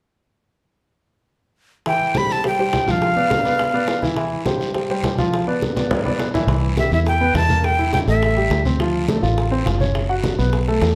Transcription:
1.86 E3 E4 E5 G5, high bongo, high conga, long guiro
2.01 high conga
2.15 G3 G4 C5 B5, high bongo, high conga, short guiro
2.29 A5, high bongo, high conga, short guiro
2.44 G3 G4 C5 G5, high bongo, high conga, long guiro
2.59 G3 G4 C5, high bongo, high conga
2.73 high bongo, low bongo, high conga, short guiro
2.87 F3 F4 F5, high bongo, high conga, short guiro
3.02 high bongo, high conga, long guiro
3.16 B3 B4 D5, high conga
3.31 high bongo, high conga, short guiro
3.45 B3 B4 D5, high bongo, high conga, short guiro
3.59 high bongo, high conga, long guiro
3.73 B3 B4 D5, high bongo, high conga
3.88 high bongo, low bongo, high conga, short guiro
4.02 E3 E4 E5, high bongo, high conga, short guiro
4.16 E3 E4 E5, high bongo, high conga, long guiro
4.32 high conga
4.46 G3 G4 C5, high bongo, high conga, short guiro
4.60 high bongo, high conga, short guiro
4.74 G3 G4 C5, high bongo, high conga, long guiro
4.89 G3 G4 C5, high bongo, high conga
5.03 high bongo, low bongo, high conga, short guiro
5.18 F3 F4 F5, high bongo, high conga, short guiro
5.33 high bongo, high conga, long guiro
5.47 B3 B4 D5, high conga
5.62 high bongo, high conga, short guiro
5.76 B3 B4 D5, high bongo, high conga, short guiro
5.91 high bongo, low conga, long guiro
6.05 B3 B4 D5, high bongo, high conga
6.19 high bongo, low bongo, short guiro
6.34 E3 E4 E5, high bongo, low conga, short guiro
6.47 C2 E3 E4, high bongo, high conga, long guiro
6.64 high conga
6.77 G3 G4 E5, high bongo, high conga, short guiro
6.92 E2 E4 E5, high bongo, high conga, short guiro
7.06 G5, high bongo, high conga, long guiro
7.21 B3 B4, high bongo, high conga
7.34 E2 E4 E5 A5, high bongo, low bongo, high conga, short guiro
7.49 A#3 A#4, high bongo, high conga, short guiro
7.64 G5, high bongo, high conga, long guiro
7.79 E4 E5, high conga
7.93 G5, high bongo, high conga, short guiro
8.07 A1 A3 A4 E5, high bongo, high conga, short guiro
8.22 high bongo, high conga, long guiro
8.37 G3 G4, high bongo, high conga
8.50 D2, high bongo, low bongo, high conga, short guiro
8.65 C4 C5, high bongo, high conga, short guiro
8.79 F3 F4, high bongo, high conga, long guiro
8.94 high conga
9.08 A3 A4, high bongo, high conga, short guiro
9.23 A1 F4 F5, high bongo, high conga, short guiro
9.37 high bongo, high conga, long guiro
9.51 C4 C5, high bongo, high conga
9.66 F#1 F4 F5, high bongo, low bongo, high conga, short guiro
9.80 C#4 C#5, high bongo, high conga, short guiro
9.95 high bongo, high conga, long guiro
10.09 F#4 F#5, high conga
10.24 high bongo, high conga, short guiro
10.38 B1 B3 B4, high bongo, high conga, short guiro
10.53 high bongo, high conga, long guiro
10.67 A3 A4, high bongo, high conga
10.81 E2, high bongo, low bongo, high conga, short guiro

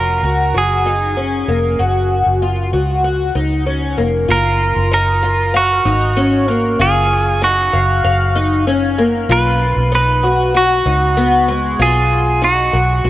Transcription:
Already playing: F1 F4 A#4
0.23 C#2 F#4
0.54 F#1 F#4 G#4
0.85 D#4
1.17 C#4
1.48 F1 A#3
1.79 F#1 F#4
2.26 F#1
2.42 F4
2.73 C#2 F#4
3.04 F#4
3.35 C#2 D#4
3.66 C#4
3.98 F1 A#3
4.29 F#1 F4 A#4
4.76 F#1
4.91 D#4 A#4
5.23 F4
5.54 F#4 F5
5.85 G#1 D#4
6.17 C#4
6.48 A#3
6.79 F#1 F4 G#4
7.42 D#4 F#4
7.73 F#1 F5
8.04 F#1 F5
8.35 D#4
8.67 C#4
8.98 A#3
9.29 B1 F4 B4
9.76 B1
9.92 D#4 B4
10.23 F#4
10.54 F#4
10.86 C#2 D#4
11.17 B3
11.48 G#3
11.79 B1 F4 G#4
12.42 D#4 F#4
12.73 B1 F#4
13.04 B1 F#4

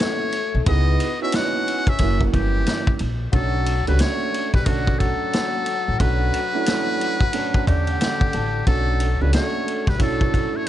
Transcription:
Already playing: A3 B3 C#4 E4 F#4 C#5
0.01 snare
0.32 ride
0.55 B1
0.66 C#2 B3 D#4 E4 G#4 D#5, kick, ride
1.00 ride
1.21 B3 C#4 D#4 E4 F#4 E5
1.32 C#4 F#5, snare, hi-hat pedal, ride
1.68 ride
1.86 C#4 E5, kick, ride
1.99 F#1 F#3 A#3 C#4 E4, kick, ride
2.21 kick
2.32 G1 E3 G4, kick, ride
2.66 snare, hi-hat pedal, ride
2.87 kick
2.99 A#1, ride
3.32 B1 F#3 A3 C#4 D4 F#4 A4, kick, ride
3.66 ride
3.87 C#2 G3 A3 C#4 D4 F#4 B4, ride
3.99 A3 C#5, snare, hi-hat pedal, ride
4.34 ride
4.54 B1 G3 B4, kick, snare
4.66 D3 A3 C#4 D4 F#4, kick, ride
4.87 kick
4.99 F#3 A4, kick, ride
5.33 snare, hi-hat pedal, ride
5.66 ride
5.88 A1
5.99 B1 F#3 A3 C#4 D4 F#4 B4, kick, ride
6.34 ride
6.53 A3 C#4 D4 E4
6.66 snare, hi-hat pedal, ride
7.01 ride
7.21 kick
7.33 A3 C#4 D4 A4, ride
7.54 kick
7.67 E2 D3 G4 D5, kick, ride
7.87 F#5, ride
8.01 F#5, snare, hi-hat pedal, ride
8.21 kick
8.33 A1 A5, ride
8.67 B1 F#3 A3 C#4 D4 F#4 A4, kick, ride
9.00 ride
9.21 C#2 G3 A3 C#4 D4 F4 B4
9.30 A3 F#4, hi-hat pedal, ride
9.34 C#5, snare
9.68 ride
9.87 B1 G3 B4, kick, snare
9.98 F#3 A3 C#4 D4 E4, kick, ride
10.02 A4
10.21 kick
10.34 kick, ride
10.54 A3 C#5

